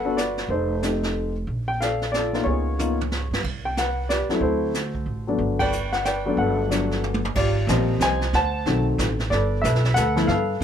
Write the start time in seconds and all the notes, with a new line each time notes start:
Already playing: G1 B4 F#5
0.05 B3 D4 F#4 A4
0.17 F#4 B4 D5, snare, hi-hat pedal
0.37 snare
0.48 F1 D#4 A4 C5, brush sweep
0.83 A3 C4 D#4 G4, snare, hi-hat pedal
1.03 snare
1.47 A#1, brush sweep
1.68 G5
1.81 A4 D5 F5, snare, hi-hat pedal
2.01 snare
2.12 F4 A4 D5, snare, hi-hat pedal
2.33 A#3 B3 D#4 F4, snare
2.44 C#2 F4 C#5, brush sweep
2.48 G#4
2.79 A#3 B3 D#4 F4, floor tom, hi-hat pedal
3.01 floor tom
3.12 snare
3.31 G2, snare
3.44 C2, brush sweep, kick, ride
3.65 G5
3.77 B4 F#5, snare, hi-hat pedal
4.09 G4 B4 D5, snare, hi-hat pedal
4.29 F#3 A3 C4 E4, muted upright bass stroke, snare
4.41 D2 F#4 A4 C5, brush sweep
4.74 snare, hi-hat pedal
4.95 kick
5.06 A1
5.27 F#3 A3 B3 D4
5.38 G1, brush sweep
5.59 B4 D5 G5, kick, ride
5.73 hi-hat pedal
5.93 F#5, snare
6.05 B4 D5 G5, snare, hi-hat pedal
6.26 F#3 A3 B3 D4
6.37 G1 A4 B4 F#5, brush sweep
6.69 F#3 A3 B3 D4, snare, hi-hat pedal
6.91 snare
7.04 mid tom
7.14 high tom
7.25 high tom
7.35 G#1 F4 G4 D5, brush sweep, kick, snare, crash
7.67 A#1 F3 G3 A#3 C4 G4 C5 D#5, snare, hi-hat pedal
8.00 C2 C5 D#5 G#5, snare, hi-hat pedal
8.21 snare
8.33 D2 C5 F#5 A5, brush sweep, snare
8.66 B1 D#3 F#3 A3 C4, snare
8.98 A1, snare, hi-hat pedal
9.19 snare
9.30 G1 A4 B4 D5, brush sweep, snare
9.62 B1 A4 B4 E5, snare, hi-hat pedal
9.75 snare
9.84 snare
9.94 D2 A4 B4 F#5, snare, hi-hat pedal
10.16 F3 A3 B3 E4, snare
10.27 G2 A4 B4 F5, brush sweep, snare
10.60 A2